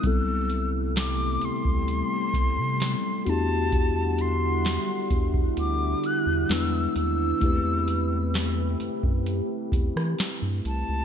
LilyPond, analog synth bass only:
\new Staff \with { instrumentName = "Analog synth bass" } { \clef bass \time 4/4 \key a \dorian \tempo 4 = 65 c,4. d,16 d,8 r16 c,16 c8 r16 e,8~ | e,4. e,8 d,8 r16 e,16 e,8 dis,8 | e,4. fis,16 fis,8 r16 e,16 e16 r16 g,16 c,16 cis,16 | }